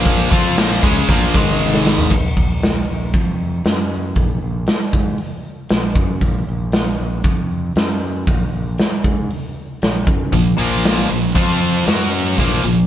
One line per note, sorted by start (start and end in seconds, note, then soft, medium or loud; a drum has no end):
0.00 0.28 A#1 medium
0.00 0.31 A#2 medium
0.00 0.30 F3 loud
0.00 0.31 A#3 medium
0.05 kick loud
0.05 open hi-hat medium
0.31 0.55 F2 medium
0.31 0.56 F3 medium
0.31 0.57 C4 medium
0.31 0.57 F4 loud
0.31 kick loud
0.57 0.81 A#1 loud
0.57 0.82 A#2 medium
0.57 0.82 F3 medium
0.57 0.83 A#3 medium
0.57 snare loud
0.57 open hi-hat medium
0.83 1.07 C#2 loud
0.83 1.08 C#3 medium
0.83 1.08 G#3 medium
0.83 1.08 C#4 medium
0.83 kick loud
1.09 1.33 A#1 loud
1.09 1.34 A#2 medium
1.09 1.34 F3 medium
1.09 1.34 A#3 loud
1.09 kick loud
1.09 open hi-hat medium
1.34 2.07 G#1 medium
1.34 2.11 G#2 medium
1.34 2.11 D#3 medium
1.34 2.11 G#3 medium
1.34 kick loud
1.60 high tom medium
1.74 snare medium
1.86 snare medium
1.98 floor tom medium
2.10 2.35 A#1 medium
2.10 kick medium
2.10 crash medium
2.37 2.84 A#1 medium
2.37 kick medium
2.62 snare loud
2.62 open hi-hat soft
2.90 3.13 A#1 medium
3.14 3.62 F2 medium
3.14 kick loud
3.14 open hi-hat soft
3.65 4.13 F#2 medium
3.65 snare loud
3.65 open hi-hat soft
4.16 4.40 A#1 medium
4.16 kick medium
4.16 open hi-hat soft
4.43 4.66 A#1 medium
4.67 snare loud
4.67 open hi-hat soft
4.93 5.17 G#2 medium
4.93 kick loud
5.18 open hi-hat soft
5.69 5.95 A#1 medium
5.69 snare loud
5.69 open hi-hat soft
5.96 6.20 F#2 medium
5.96 kick loud
6.21 6.46 A#1 medium
6.21 kick medium
6.21 open hi-hat soft
6.48 6.96 A#1 medium
6.72 snare loud
6.72 open hi-hat soft
7.00 7.23 A#1 medium
7.24 7.72 F2 medium
7.24 kick loud
7.24 open hi-hat soft
7.76 8.24 F#2 medium
7.76 snare loud
7.76 open hi-hat soft
8.27 8.51 A#1 medium
8.27 kick loud
8.27 open hi-hat soft
8.54 8.77 A#1 medium
8.78 snare loud
8.78 open hi-hat soft
9.04 9.28 G#2 medium
9.04 kick medium
9.31 open hi-hat soft
9.82 10.06 A#1 medium
9.82 snare loud
9.82 open hi-hat soft
10.07 10.31 F#2 medium
10.07 kick loud
10.33 10.57 A#1 medium
10.33 10.53 A#2 medium
10.33 10.53 F3 medium
10.33 kick medium
10.33 open hi-hat soft
10.57 11.06 A#1 medium
10.57 11.08 A#2 medium
10.57 11.08 F3 medium
10.57 11.09 A#3 medium
10.84 snare loud
10.84 open hi-hat soft
11.09 11.34 A#1 medium
11.09 11.30 A#2 medium
11.09 11.30 F3 medium
11.35 11.84 F2 medium
11.35 11.86 F3 medium
11.35 11.86 C4 loud
11.35 11.87 F4 medium
11.35 kick loud
11.35 open hi-hat soft
11.87 12.35 F#2 medium
11.87 12.38 F#3 medium
11.87 12.38 C#4 medium
11.87 12.38 F#4 loud
11.87 snare loud
11.87 open hi-hat soft
12.38 12.63 A#1 medium
12.38 12.63 A#2 medium
12.38 12.63 F3 medium
12.38 12.64 A#3 loud
12.38 kick medium
12.38 open hi-hat medium
12.64 12.87 A#1 medium
12.64 12.85 A#2 medium
12.64 12.85 F3 medium